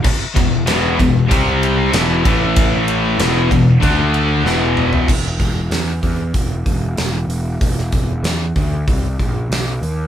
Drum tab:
CC |x---------------|----------------|x---------------|----------------|
RD |--x-x-x-x-x-x-x-|x-x-x-x-x-x-----|----------------|----------------|
HH |----------------|----------------|--o-o-o-o-o-o-o-|o-o-o-o-o-o-o-o-|
SD |----o-------o---|----o-------o---|----o-------o---|-o--o-------o---|
T2 |----------------|--------------o-|----------------|----------------|
FT |----------------|---------------o|----------------|----------------|
BD |o-o---o-o-----o-|o-----o-o-------|o-o---o-o-o-----|o-o---o-o-o-----|